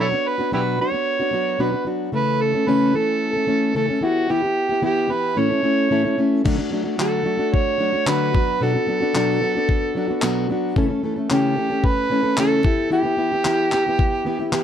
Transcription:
Already playing: B2
0.00 F#3 B3 D4 E4 F#4 A4 C#5
0.11 B3 D4 F#4
0.28 B4
0.38 B3 D4 F#4
0.52 B2 F#3 B3 D4 E4 F#4 G4 B4
0.79 F#3 B3 D4 F#4 C#5
0.93 B3 D4
1.20 B3 D4 F#4
1.31 F#3 B3 D4 F#4
1.59 B2 F#3 B3 D4 F#4 B4
1.72 B3 D4 F#4
1.85 F#3 B3 D4 F#4
2.12 C#3 E3 A3 C#4 A4 B4
2.42 A4
2.53 A3 C#4 A4
2.67 C#3 E3 A3 C#4 A4 B4
2.94 E3 A3 C#4 A4
3.33 A3 C#4 A4
3.47 E3 A3 C#4 A4
3.75 C#3 E3 A3 C#4 A4
3.88 A3 C#4 A4
4.01 E3 B3 E4 F#4 G4
4.29 E3 B3 E4 G4
4.42 B3 E4 G4
4.69 B3 E4 G4
4.82 E3 B3 E4 G4
5.09 E3 B3 E4 G4 B4
5.37 A2 E3 A3 C#4 E4 A4 C#5
5.50 A3 C#4 E4 A4
5.63 A3 C#4 E4 A4
5.90 A2 E3 A3 C#4 E4 A4
6.04 A3 C#4 E4 A4
6.18 A3 C#4 E4 A4
6.44 D3 F#3 A3 D4 F#4, kick, crash
6.57 A3 D4 F#4
6.71 F#3 A3 D4 F#4
6.84 A3 D4 F#4
6.97 D3 F#3 A3 D4 F#4 A4, clap
7.23 F#3 A3 D4 F#4
7.38 A3 D4 F#4
7.54 C#5, kick
7.78 F#3 A3 D4 F#4
7.93 A3 D4 F#4
8.06 D3 F#3 A3 D4 F#4 B4, clap
8.33 F#3 B3 D4 F#4, kick
8.61 B2 F#3 B3 D4 F#4 A4
8.73 B3 D4 F#4
8.87 F#3 B3 D4 F#4
9.00 B3 D4 F#4
9.14 B2 F#3 B3 D4 F#4, clap
9.41 F#3 B3 D4 F#4
9.55 B3 D4 F#4
9.69 kick
9.95 F#3 B3 D4 F#4
10.08 B3 D4 F#4
10.22 B2 F#3 B3 D4 F#4, clap
10.49 F#3 B3 D4 F#4
10.76 C#3 E3 A3 C#4 A4, kick
10.88 A3 C#4 A4
11.03 E3 A3 C#4 A4
11.16 A3 C#4 A4
11.30 C#3 E3 A3 C#4 G4 A4, clap
11.57 E3 A3 C#4 A4
11.70 A3 C#4 A4
11.84 B4, kick
12.10 E3 A3 C#4 A4
12.23 A3 C#4 A4
12.37 C#3 E3 A3 C#4 A4, clap
12.63 E3 B3 E4 G4, kick
12.90 E3 B3 E4 G4
13.03 B3 E4 G4
13.17 E3 B3 E4 G4
13.32 B3 E4 G4
13.45 E3 B3 E4 G4, clap
13.72 E3 B3 E4 G4, clap
13.86 B3 E4 G4
13.99 kick
14.25 E3 B3 E4 G4
14.39 B3 E4 G4
14.52 E3 B3 E4 G4, clap

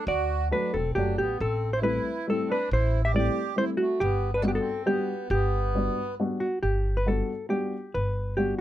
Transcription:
0.07 D2 F#4 D5
0.51 F#3 A3 D4 F#4 B4
0.74 E1 C4 A4
0.95 F#1 F#3 A3 D4 F#4 G4
1.18 A1 B3 G4
1.40 A1 C4 A4
1.73 E4 C5
1.82 G3 A3 C4 E4 B4
1.87 E4
2.27 G3 A3 C4 E4 A4
2.49 D4 B4
2.71 A1 E4 C5
3.05 G4 E5
3.14 G3 A3 C4 E4 G4 D5
3.56 G3 A3 C4 E4 C5
3.61 E4
3.77 A3 F#4
4.00 G1 B3 G4
4.34 D4 B4
4.42 G3 B3 D4 F#4 A4
4.48 B3 G4
4.55 A4
4.60 C4
4.86 G3 B3 D4 F#4 G4
5.30 G1 B3 G4
5.75 G3 B3 D4 F#4
6.20 G3 B3 D4 F#4
6.40 F#4
6.63 G1 G4
6.97 B4
7.06 G3 B3 D4 F#4 A4
7.49 G3 B3 D4 F#4 G4
7.94 G1 B4
8.37 G3 B3 D4 F#4 G4

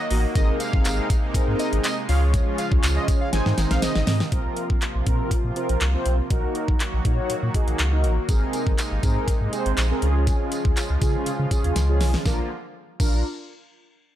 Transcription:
Already playing: D#3 F#3 A#3 F#4 D#5
0.10 A1 A#3 D#4 F#4 A#4, open hi-hat
0.35 G#1 C3 G#3 C4 D#4 G#4 A#4 D#5, kick, closed hi-hat, tambourine
0.60 F5, closed hi-hat, tambourine
0.73 G#1 C4 D#4 G#4 A#4, kick
0.85 G#1, clap, closed hi-hat, tambourine
1.10 kick, closed hi-hat, tambourine
1.34 G#2 C4 D#4 G#4 A#4, kick, closed hi-hat, tambourine
1.48 G#2
1.59 D#5, closed hi-hat, tambourine
1.73 G#1, closed hi-hat
1.84 D#5, clap, closed hi-hat, tambourine
2.09 C#2 C#3 F3 C#4 F4 G#4 C#5 F5, open hi-hat, tambourine
2.34 kick, closed hi-hat, tambourine
2.58 F5, closed hi-hat, tambourine
2.71 C#2 C#4 F4 G#4 C#5, kick
2.83 C#2, clap, closed hi-hat, tambourine
2.96 D#5
3.08 kick, closed hi-hat, tambourine
3.21 F5
3.33 G#1 C3 D#3 C4 D#4 G#4 C5 G#5, snare, closed hi-hat, tambourine
3.46 G#2, snare
3.57 G#1, snare, closed hi-hat, tambourine
3.71 A#1 F5, snare, closed hi-hat
3.82 G#1 D#5, snare, closed hi-hat, tambourine
3.95 G#1, snare
4.07 G#2 C4 D#4 G#4 D#5, snare, open hi-hat, tambourine
4.20 snare
4.32 A#1 C3 F3 A#3 C4 F4 A#4, kick, closed hi-hat
4.57 closed hi-hat
4.70 A#1, kick
4.82 clap, closed hi-hat
4.95 A#1
5.06 A#2 C4 F4 A#4, kick, closed hi-hat
5.31 A#2, kick, closed hi-hat
5.44 A#2
5.56 C4 F4 A#4, closed hi-hat
5.69 A#1, closed hi-hat
5.81 C2, clap, closed hi-hat
5.94 C4 F4 C5
6.06 B1, closed hi-hat
6.30 A#1 D#3 F#3 D#4 F#4 A#4, kick, closed hi-hat
6.55 closed hi-hat
6.68 A#1, kick
6.80 clap, closed hi-hat
6.93 A#1
7.05 A#2 D#4 F#4 C#5, kick, closed hi-hat
7.30 A#2, closed hi-hat
7.43 A#2
7.54 D#4 F#4 G#4, kick, closed hi-hat
7.68 A#1, closed hi-hat
7.79 C#2, clap, closed hi-hat
7.92 D#4 F#4 A#4
8.04 A1, closed hi-hat
8.29 G#1 C3 G#3 C4 D#4 G#4 A#4, kick, closed hi-hat, tambourine
8.53 closed hi-hat, tambourine
8.67 G#1, kick
8.78 clap, closed hi-hat, tambourine
8.91 G#1
9.03 G#2 C4 G#4 A#4, kick, closed hi-hat, tambourine
9.28 G#2, kick, closed hi-hat, tambourine
9.41 G#2
9.53 C4 G#4 C5, closed hi-hat, tambourine
9.66 G#1, closed hi-hat
9.77 A#1, clap, closed hi-hat, tambourine
9.90 C4 G#4 A#4
10.02 C#2 C#3 F3 C#4 F4 G#4, closed hi-hat
10.27 kick, closed hi-hat, tambourine
10.52 closed hi-hat, tambourine
10.65 C#2, kick
10.77 clap, closed hi-hat, tambourine
10.90 C#2
11.01 C#3 C#4 F4 G#4, kick, closed hi-hat, tambourine
11.26 C#3, closed hi-hat, tambourine
11.39 C#3
11.51 C#4 F4 G#4, kick, closed hi-hat, tambourine
11.64 D#2, closed hi-hat
11.76 C#2, snare, closed hi-hat, tambourine
11.89 C#4 F4 G#4
12.01 B1, snare, open hi-hat, tambourine
12.14 snare
12.25 A#1 D3 F3 A#3 D4 F4 A#4, kick, snare, tambourine
13.00 A#1 D4 F4 A#4, kick, crash, tambourine

